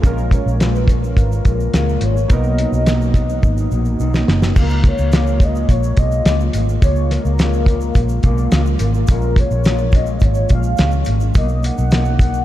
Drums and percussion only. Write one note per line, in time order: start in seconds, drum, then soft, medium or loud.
0.04 kick loud
0.04 closed hi-hat medium
0.04 shaker medium
0.18 shaker soft
0.31 kick medium
0.31 closed hi-hat medium
0.31 shaker soft
0.48 shaker soft
0.60 snare medium
0.60 closed hi-hat medium
0.60 shaker medium
0.75 shaker soft
0.88 kick medium
0.88 closed hi-hat medium
0.88 shaker soft
1.04 shaker soft
1.17 kick medium
1.17 closed hi-hat medium
1.17 shaker medium
1.32 shaker soft
1.45 kick medium
1.45 closed hi-hat medium
1.45 shaker soft
1.60 shaker soft
1.74 snare loud
1.74 closed hi-hat medium
1.74 shaker medium
1.89 shaker soft
2.01 closed hi-hat medium
2.17 shaker soft
2.30 kick loud
2.30 closed hi-hat medium
2.30 shaker medium
2.44 shaker soft
2.58 closed hi-hat medium
2.58 shaker soft
2.73 shaker soft
2.86 snare loud
2.86 closed hi-hat medium
2.86 shaker medium
3.01 shaker soft
3.14 kick medium
3.14 closed hi-hat medium
3.14 shaker soft
3.29 shaker soft
3.43 kick medium
3.43 shaker medium
3.58 shaker medium
3.71 shaker soft
3.85 shaker soft
4.00 shaker medium
4.14 snare medium
4.14 shaker soft
4.28 snare medium
4.42 snare medium
4.42 shaker soft
4.56 kick loud
4.56 crash loud
4.56 shaker medium
4.69 shaker soft
4.84 kick loud
4.84 closed hi-hat medium
4.98 shaker soft
5.12 snare loud
5.12 closed hi-hat medium
5.12 shaker medium
5.27 shaker soft
5.40 kick loud
5.40 closed hi-hat medium
5.40 shaker soft
5.55 shaker soft
5.69 kick medium
5.69 closed hi-hat medium
5.69 shaker medium
5.83 shaker medium
5.97 kick medium
5.97 closed hi-hat medium
5.97 shaker medium
6.12 shaker soft
6.25 snare loud
6.25 closed hi-hat medium
6.25 shaker medium
6.40 shaker soft
6.53 closed hi-hat medium
6.53 shaker medium
6.69 shaker soft
6.82 kick loud
6.82 closed hi-hat medium
6.82 shaker medium
6.96 shaker soft
7.11 snare soft
7.11 closed hi-hat medium
7.25 shaker soft
7.39 snare medium
7.39 closed hi-hat medium
7.39 shaker medium
7.53 shaker soft
7.66 kick loud
7.66 closed hi-hat medium
7.66 shaker soft
7.81 shaker soft
7.95 kick medium
7.95 closed hi-hat medium
7.95 shaker medium
8.09 shaker medium
8.23 kick medium
8.23 closed hi-hat medium
8.23 shaker soft
8.38 shaker soft
8.51 snare loud
8.51 closed hi-hat medium
8.51 shaker medium
8.66 shaker soft
8.79 closed hi-hat medium
8.79 shaker medium
8.94 shaker soft
9.07 kick loud
9.07 closed hi-hat medium
9.07 shaker medium
9.22 shaker soft
9.36 kick loud
9.36 closed hi-hat medium
9.51 shaker soft
9.64 snare loud
9.64 closed hi-hat medium
9.64 shaker medium
9.78 shaker soft
9.92 kick medium
9.92 closed hi-hat medium
9.92 shaker soft
10.06 shaker soft
10.20 kick medium
10.20 closed hi-hat medium
10.20 shaker medium
10.34 shaker medium
10.49 kick medium
10.49 closed hi-hat medium
10.49 shaker soft
10.63 shaker medium
10.77 snare loud
10.77 closed hi-hat medium
10.77 shaker medium
10.91 shaker soft
11.05 closed hi-hat medium
11.05 shaker medium
11.20 shaker soft
11.34 kick loud
11.34 closed hi-hat loud
11.34 shaker medium
11.49 shaker soft
11.63 closed hi-hat medium
11.63 shaker soft
11.78 shaker medium
11.91 snare loud
11.91 closed hi-hat medium
11.91 shaker medium
12.05 shaker soft
12.19 kick loud
12.19 closed hi-hat medium
12.19 shaker soft
12.34 shaker soft